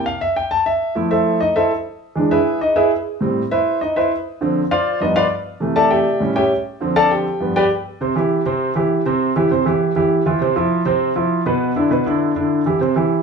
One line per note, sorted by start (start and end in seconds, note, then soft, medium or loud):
0.06 0.20 F5 medium
0.21 0.36 E5 medium
0.36 0.51 G5 medium
0.51 0.65 A5 medium
0.66 0.94 E5 medium
0.95 1.38 F3 medium
0.95 1.39 A3 soft
0.95 1.10 E4 medium
1.11 1.39 E4 medium
1.11 1.39 A4 medium
1.11 1.39 C5 medium
1.11 1.39 E5 medium
1.40 1.55 D#4 medium
1.40 1.55 D#5 medium
1.56 1.71 E4 medium
1.56 1.71 A4 medium
1.56 1.71 C5 medium
1.56 1.70 E5 medium
2.16 2.36 E3 medium
2.16 2.36 G#3 medium
2.16 2.36 D4 medium
2.31 2.59 E4 medium
2.31 2.59 G#4 medium
2.31 2.59 B4 medium
2.31 2.59 E5 medium
2.61 2.76 D#4 medium
2.61 2.76 D#5 medium
2.76 2.90 E4 medium
2.76 2.90 G#4 medium
2.76 2.91 B4 medium
2.76 2.90 E5 medium
3.21 3.41 A2 medium
3.21 3.41 G3 soft
3.21 3.41 C4 medium
3.51 3.79 E4 medium
3.51 3.79 B4 medium
3.51 3.79 C5 medium
3.51 3.79 E5 medium
3.81 3.96 D#4 medium
3.81 3.96 D#5 medium
3.96 4.11 E4 medium
3.96 4.11 B4 medium
3.96 4.11 C5 medium
3.96 4.11 E5 medium
4.41 4.61 D3 medium
4.41 4.61 F3 medium
4.41 4.61 C4 medium
4.71 4.99 F4 medium
4.71 4.99 C5 medium
4.71 4.99 D5 medium
4.71 4.99 F5 loud
5.01 5.21 G2 medium
5.01 5.21 F3 medium
5.01 5.21 B3 medium
5.01 5.16 D#4 medium
5.01 5.16 D#5 medium
5.16 5.25 F4 medium
5.16 5.25 B4 medium
5.16 5.25 D5 medium
5.16 5.25 F5 loud
5.60 6.03 C3 medium
5.60 6.03 E3 medium
5.60 6.04 A3 medium
5.76 5.91 A4 medium
5.76 5.89 D5 medium
5.76 5.90 E5 medium
5.76 5.90 A5 medium
5.91 6.33 G4 medium
5.91 6.19 D5 medium
5.91 6.33 E5 medium
5.91 6.32 G5 medium
6.20 6.40 A2 medium
6.20 6.41 G3 medium
6.20 6.41 C#4 medium
6.36 6.51 G4 medium
6.36 6.50 C#5 medium
6.36 6.50 E5 medium
6.36 6.50 G5 medium
6.80 7.23 D3 medium
6.80 7.23 F3 medium
6.80 7.24 C4 medium
6.96 7.10 A4 medium
6.96 7.10 D5 medium
6.96 7.10 F5 medium
6.96 7.10 A5 loud
7.11 7.53 G4 medium
7.11 7.53 G5 medium
7.40 7.60 G2 medium
7.40 7.60 F3 medium
7.40 7.61 B3 medium
7.56 7.65 G4 medium
7.56 7.65 B4 medium
7.56 7.65 D5 medium
7.56 7.65 G5 loud
8.01 8.13 C3 medium
8.01 8.13 C4 medium
8.01 8.13 C5 medium
8.16 8.40 E3 medium
8.16 8.40 E4 medium
8.16 8.41 G4 medium
8.46 8.70 C3 medium
8.46 8.70 C4 medium
8.46 8.71 C5 medium
8.75 9.00 E3 medium
8.75 9.00 E4 medium
8.75 9.01 G4 medium
9.06 9.30 C3 medium
9.06 9.31 C4 medium
9.06 9.31 C5 medium
9.36 9.48 E3 medium
9.36 9.48 E4 medium
9.36 9.49 G4 medium
9.51 9.63 C3 medium
9.51 9.63 C4 medium
9.51 9.64 C5 medium
9.66 9.90 E3 medium
9.66 9.91 E4 medium
9.66 9.91 G4 medium
9.96 10.21 E3 medium
9.96 10.21 E4 medium
9.96 10.21 G4 medium
10.26 10.38 E3 medium
10.26 10.38 E4 medium
10.26 10.38 F4 medium
10.41 10.53 C3 medium
10.41 10.53 C4 medium
10.41 10.54 C5 medium
10.56 10.80 F3 medium
10.56 10.81 E4 medium
10.56 10.81 F4 medium
10.85 11.10 C3 medium
10.85 11.10 C4 medium
10.85 11.11 C5 medium
11.16 11.40 F3 medium
11.16 11.41 E4 medium
11.16 11.41 F4 medium
11.46 11.71 B2 medium
11.46 11.71 B3 medium
11.46 11.71 B4 medium
11.76 11.88 D3 medium
11.76 11.88 D4 medium
11.76 11.89 E4 medium
11.91 12.03 B2 medium
11.91 12.03 B3 medium
11.91 12.03 B4 medium
12.06 12.31 D3 medium
12.06 12.31 D4 medium
12.06 12.31 E4 medium
12.36 12.61 D3 medium
12.36 12.61 D4 medium
12.36 12.61 E4 medium
12.66 12.78 E3 medium
12.66 12.79 E4 medium
12.66 12.79 G4 medium
12.81 12.93 C3 medium
12.81 12.93 C4 medium
12.81 12.94 C5 medium
12.96 13.21 E3 medium
12.96 13.21 E4 medium
12.96 13.21 G4 medium